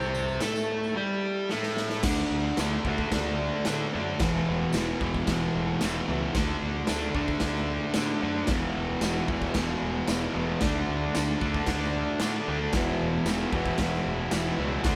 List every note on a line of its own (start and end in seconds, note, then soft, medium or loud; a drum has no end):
0.00 0.37 C2 loud
0.00 0.40 C3 medium
0.00 0.41 C4 loud
0.00 1.99 E4 medium
0.00 2.00 A4 medium
0.00 2.01 E5 medium
0.00 tambourine soft
0.14 tambourine medium
0.28 tambourine soft
0.41 0.92 A2 medium
0.41 0.94 A3 medium
0.41 0.95 A4 loud
0.41 snare loud
0.41 tambourine loud
0.41 crash medium
0.56 tambourine medium
0.84 tambourine soft
0.96 1.49 G3 medium
0.96 1.50 G4 loud
1.49 2.03 A2 medium
1.49 2.04 A3 loud
1.49 snare medium
1.63 snare medium
1.77 snare loud
1.89 snare medium
2.03 2.22 D2 loud
2.03 2.58 D3 loud
2.03 2.58 A3 loud
2.03 2.59 D4 loud
2.03 kick loud
2.03 snare loud
2.03 crash loud
2.03 crash medium
2.31 2.49 D2 medium
2.57 2.77 D2 medium
2.57 2.86 D3 medium
2.57 2.86 A3 medium
2.57 2.88 D4 medium
2.57 snare loud
2.57 tambourine loud
2.57 crash medium
2.85 3.03 D2 medium
2.85 3.13 D3 medium
2.85 3.13 A3 medium
2.85 3.14 D4 medium
2.85 kick medium
2.98 kick medium
3.12 3.49 D2 loud
3.12 3.65 D3 medium
3.12 3.65 A3 loud
3.12 3.67 D4 loud
3.12 kick medium
3.12 snare loud
3.12 crash medium
3.65 3.85 A2 medium
3.65 3.92 D3 loud
3.65 3.93 A3 loud
3.65 3.94 D4 medium
3.65 snare loud
3.65 tambourine loud
3.65 crash medium
3.93 4.12 F#2 medium
3.93 4.18 D3 loud
3.93 4.19 A3 medium
3.93 4.19 D4 medium
4.20 4.38 E1 loud
4.20 4.73 E2 medium
4.20 4.74 B2 loud
4.20 4.75 E3 loud
4.20 kick loud
4.20 snare loud
4.20 crash medium
4.48 4.66 E1 medium
4.73 4.92 E1 loud
4.73 5.00 E2 medium
4.73 5.01 B2 medium
4.73 5.02 E3 medium
4.73 snare loud
4.73 tambourine loud
4.73 crash medium
5.01 5.19 E1 medium
5.01 5.28 E2 medium
5.01 5.28 B2 medium
5.01 5.29 E3 medium
5.01 kick medium
5.14 kick medium
5.27 5.46 E1 loud
5.27 5.80 E2 loud
5.27 5.81 B2 loud
5.27 5.83 E3 loud
5.27 kick loud
5.27 snare loud
5.27 crash medium
5.55 5.73 E1 medium
5.81 6.00 E1 medium
5.81 6.07 E2 medium
5.81 6.07 B2 loud
5.81 6.09 E3 loud
5.81 snare loud
5.81 tambourine loud
5.81 crash medium
6.08 6.26 C#2 medium
6.08 6.33 E2 medium
6.08 6.33 B2 medium
6.08 6.34 E3 medium
6.35 6.53 D2 loud
6.35 6.86 D3 loud
6.35 6.87 A3 loud
6.35 6.88 D4 loud
6.35 kick loud
6.35 snare loud
6.35 crash medium
6.62 6.80 D2 medium
6.87 7.07 D2 medium
6.87 7.14 D3 medium
6.87 7.14 A3 medium
6.87 7.15 D4 medium
6.87 snare loud
6.87 tambourine loud
6.87 crash medium
7.14 7.33 D2 medium
7.14 7.42 D3 medium
7.14 7.42 A3 loud
7.14 7.43 D4 medium
7.14 kick medium
7.28 kick medium
7.40 7.78 D2 loud
7.40 7.94 D3 loud
7.40 7.94 A3 loud
7.40 7.96 D4 loud
7.40 kick medium
7.40 snare loud
7.40 crash medium
7.94 8.14 A2 medium
7.94 8.20 D3 medium
7.94 8.21 A3 medium
7.94 8.22 D4 medium
7.94 snare loud
7.94 tambourine loud
7.94 crash medium
8.21 8.41 F#2 medium
8.21 8.47 D3 medium
8.21 8.47 A3 medium
8.21 8.48 D4 loud
8.47 8.67 E1 loud
8.47 9.02 E2 loud
8.47 9.03 B2 loud
8.47 9.04 E3 loud
8.47 kick loud
8.47 snare loud
8.47 crash medium
8.76 8.94 E1 medium
9.01 9.20 E1 loud
9.01 9.28 E2 medium
9.01 9.29 B2 medium
9.01 9.30 E3 medium
9.01 snare loud
9.01 tambourine medium
9.01 crash medium
9.28 9.47 E1 medium
9.28 9.54 E2 medium
9.28 9.55 B2 medium
9.28 9.56 E3 medium
9.28 kick medium
9.42 kick medium
9.54 9.73 E1 loud
9.54 10.07 E2 loud
9.54 10.09 B2 loud
9.54 10.09 E3 loud
9.54 kick medium
9.54 snare loud
9.54 crash medium
9.82 10.00 E1 medium
10.08 10.26 E1 medium
10.08 10.33 E2 medium
10.08 10.34 B2 medium
10.08 10.35 E3 loud
10.08 snare loud
10.08 tambourine loud
10.08 crash medium
10.34 10.53 E1 medium
10.34 10.59 E2 medium
10.34 10.60 B2 medium
10.34 10.60 E3 medium
10.60 10.80 D2 loud
10.60 11.14 D3 loud
10.60 11.14 A3 loud
10.60 11.15 D4 loud
10.60 12.70 F#4 medium
10.60 12.71 A4 medium
10.60 kick loud
10.60 snare loud
10.60 crash medium
10.65 12.72 D5 medium
10.89 11.07 D2 medium
11.15 11.34 D2 loud
11.15 11.39 D3 medium
11.15 11.40 A3 medium
11.15 11.41 D4 medium
11.15 snare loud
11.15 tambourine loud
11.15 crash medium
11.40 11.60 D2 medium
11.40 11.66 D3 medium
11.40 11.67 A3 loud
11.40 11.68 D4 medium
11.40 kick medium
11.54 kick medium
11.66 12.04 D2 loud
11.66 12.19 D3 loud
11.66 12.19 A3 loud
11.66 12.20 D4 loud
11.66 kick loud
11.66 snare loud
11.66 crash medium
12.20 12.39 A2 medium
12.20 12.45 D3 medium
12.20 12.47 A3 loud
12.20 12.47 D4 loud
12.20 snare loud
12.20 tambourine loud
12.20 crash medium
12.47 12.66 D2 medium
12.47 12.72 D3 medium
12.47 12.73 A3 medium
12.47 12.73 D4 loud
12.73 12.92 E1 loud
12.73 13.25 E2 medium
12.73 13.26 B2 loud
12.73 13.27 E3 loud
12.73 14.83 G#4 medium
12.73 14.83 B4 medium
12.73 kick loud
12.73 snare loud
12.73 crash medium
12.77 14.84 E5 medium
13.01 13.19 E1 medium
13.25 13.44 E1 loud
13.25 13.52 E2 medium
13.25 13.53 B2 medium
13.25 13.53 E3 medium
13.25 snare loud
13.25 tambourine loud
13.25 crash medium
13.53 13.71 E1 medium
13.53 13.77 E2 medium
13.53 13.79 B2 loud
13.53 13.79 E3 loud
13.53 kick loud
13.66 kick medium
13.78 13.97 E1 loud
13.78 14.30 E2 loud
13.78 14.32 B2 loud
13.78 14.32 E3 loud
13.78 kick loud
13.78 snare loud
13.78 crash medium
14.06 14.24 E1 medium
14.31 14.50 E1 medium
14.31 14.56 E2 loud
14.31 14.57 B2 medium
14.31 14.58 E3 loud
14.31 snare loud
14.31 tambourine loud
14.31 crash medium
14.58 14.77 C#2 medium
14.58 14.83 E2 medium
14.58 14.84 B2 medium
14.58 14.84 E3 medium
14.83 14.96 D2 loud
14.83 14.96 D3 loud
14.83 14.96 A3 loud
14.83 14.96 D4 loud
14.83 14.96 F#4 medium
14.83 14.96 A4 medium
14.83 14.96 D5 medium
14.83 kick loud
14.83 snare loud
14.83 crash medium